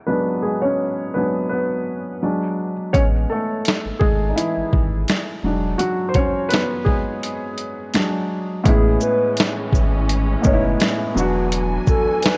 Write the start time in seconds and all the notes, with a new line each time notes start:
0.06 F#3 G#3 B3 D4 B4
0.42 G#3 G#4
0.61 C#4 C#5
1.14 F#3 G#3 B3 D4 B4
1.49 B3 B4
2.23 F#3 G#3 D4
2.93 A1 G#3 B3 C#4 C#5, kick, closed hi-hat
3.30 A3 A4
3.65 snare, closed hi-hat
3.85 G#1
3.99 G#1 G#3 G#4, kick
4.30 D#4
4.36 E3 E4, closed hi-hat
4.57 G#1
4.73 G#1, kick
5.08 snare, closed hi-hat
5.43 E1 F#3 G#3 D4
5.78 F#3 F#4, closed hi-hat
6.09 C5
6.14 C#4 C#5, kick, closed hi-hat
6.49 B3 B4, closed hi-hat
6.54 snare
6.85 G#3 G#4, kick
7.23 closed hi-hat
7.58 closed hi-hat
7.94 F#3 G#3 D4, snare, closed hi-hat
8.64 A1 A2 E3 G#3 B3 C#4 G#4, kick, closed hi-hat
8.69 E4
9.01 B4, shaker
9.37 snare, closed hi-hat
9.72 G#1, kick, shaker
10.09 closed hi-hat
10.42 F#1 A2 G#3 B3 C#4 C#5, kick, shaker
10.47 D#4
10.53 E4
10.80 snare, closed hi-hat
11.14 E1 E2 E3 F#3 B3 D4 F#4 G#5, shaker
11.20 F#4
11.52 closed hi-hat
11.87 A4, kick, shaker
12.23 B4, snare, closed hi-hat